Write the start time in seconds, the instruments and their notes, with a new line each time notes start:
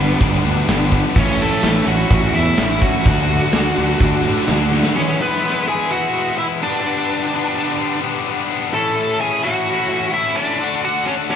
Already playing: fingered electric bass G1, distorted electric guitar D3 B3 D4, lead electric guitar B3 B4, string section B4 D5 G5 D6
0.00 distorted electric guitar G2 D3 G3
0.10 closed hi-hat
0.21 fingered electric bass G1, distorted electric guitar D3 G3 B3 D4, kick, closed hi-hat
0.33 closed hi-hat
0.44 fingered electric bass D2, distorted electric guitar G2 D3 G3 B3 D4, closed hi-hat
0.57 closed hi-hat
0.68 fingered electric bass G1, distorted electric guitar G2 D3 G3 B3, snare, closed hi-hat
0.72 distorted electric guitar D4
0.80 closed hi-hat
0.92 distorted electric guitar G3 B3 D4, kick, closed hi-hat
1.16 fingered electric bass A1, distorted electric guitar A2 E3 A3 C#4 E4, lead electric guitar C#4 C#5, string section A4 C#5 E5 C#6, kick, crash
1.28 closed hi-hat
1.39 lead electric guitar A3 A4, distorted electric guitar A3 C#4 E4, closed hi-hat
1.51 closed hi-hat
1.63 fingered electric bass A1, distorted electric guitar E3 A3 C#4 E4, snare, closed hi-hat
1.86 fingered electric bass A1, distorted electric guitar A2 E3 A3 C#4 E4, lead electric guitar F#4 F#5, closed hi-hat
1.98 closed hi-hat
2.10 fingered electric bass A1, distorted electric guitar E3 A3 C#4 E4, kick, closed hi-hat
2.34 fingered electric bass E2, distorted electric guitar E3 A3 C#4 E4, lead electric guitar E4 E5, closed hi-hat
2.38 distorted electric guitar A2
2.58 fingered electric bass A1, distorted electric guitar A2 E3 A3 C#4 E4, snare, closed hi-hat
2.70 closed hi-hat
2.81 distorted electric guitar C#4 E4, lead electric guitar F#4 F#5, kick, closed hi-hat
2.85 distorted electric guitar A3
2.94 closed hi-hat
3.05 fingered electric bass D2, distorted electric guitar D3 A3 D4, string section D5 F#5 D6, kick, closed hi-hat
3.10 distorted electric guitar F#4
3.29 distorted electric guitar D4 F#4, closed hi-hat
3.34 distorted electric guitar A3
3.53 fingered electric bass D2, distorted electric guitar D3 A3 D4, snare, closed hi-hat
3.57 distorted electric guitar F#4
3.64 closed hi-hat
3.76 fingered electric bass D2, distorted electric guitar D3 A3 D4 F#4, closed hi-hat
3.89 closed hi-hat
4.00 fingered electric bass D2, distorted electric guitar D3 A3 D4 F#4, kick, closed hi-hat
4.12 closed hi-hat
4.24 fingered electric bass A2, distorted electric guitar A3 D4 F#4, closed hi-hat
4.29 distorted electric guitar D3
4.36 snare, closed hi-hat
4.48 fingered electric bass D2, distorted electric guitar D3 A3, snare, closed hi-hat
4.52 distorted electric guitar D4 F#4
4.60 closed hi-hat
4.72 distorted electric guitar A3 D4 F#4, snare
4.83 snare
4.95 distorted electric guitar E3 G#3 B3 E4, lead electric guitar C#4 C#5, string section B4 E5 G#5 E6
5.18 distorted electric guitar G#3 B3 E4, lead electric guitar B3 B4
5.43 distorted electric guitar E3 G#3 B3 E4
5.66 distorted electric guitar E3 G#3 B3 E4, lead electric guitar G#4 G#5
5.91 distorted electric guitar E3 G#3 B3 E4, lead electric guitar F#4 F#5
6.14 distorted electric guitar E3 G#3 B3 E4
6.37 distorted electric guitar E3 G#3 B3 E4, lead electric guitar E4 E5
6.60 distorted electric guitar D3 G3 B3 D4, lead electric guitar D4 D5, string section D5 G5 D6
6.65 distorted electric guitar G2
6.85 distorted electric guitar G2 D3 G3 B3 D4
7.09 distorted electric guitar G3 B3 D4
7.32 distorted electric guitar D3 G3 B3 D4
7.56 distorted electric guitar G2 D3 G3 B3 D4
7.78 distorted electric guitar D3 G3 B3 D4
8.01 distorted electric guitar G2 D3 G3 B3 D4
8.26 distorted electric guitar D3 G3 B3 D4
8.49 distorted electric guitar G3 B3 D4
8.73 distorted electric guitar A2 E3 A3 C#4 E4, string section A4 C#5 E5 C#6, lead electric guitar A4 A5
8.96 distorted electric guitar A3 C#4 E4
9.20 distorted electric guitar E3 A3 C#4 E4, lead electric guitar G#4 G#5
9.43 distorted electric guitar A2 E3 A3 C#4 E4, lead electric guitar F#4 F#5
9.66 distorted electric guitar E3 A3 C#4 E4
9.89 distorted electric guitar A2 E3 A3 C#4 E4
10.12 distorted electric guitar E3 A3 C#4 E4, lead electric guitar E4 E5
10.35 distorted electric guitar A3 C#4 E4, lead electric guitar D4 D5
10.59 distorted electric guitar D3 A3 D4 F#4, string section A4 D5 F#5 D6
10.82 distorted electric guitar A3 D4 F#4, lead electric guitar F#4 F#5
11.06 distorted electric guitar D3 A3 D4, lead electric guitar C#4 C#5
11.10 distorted electric guitar F#4
11.30 distorted electric guitar A3 D4 F#4, lead electric guitar D4 D5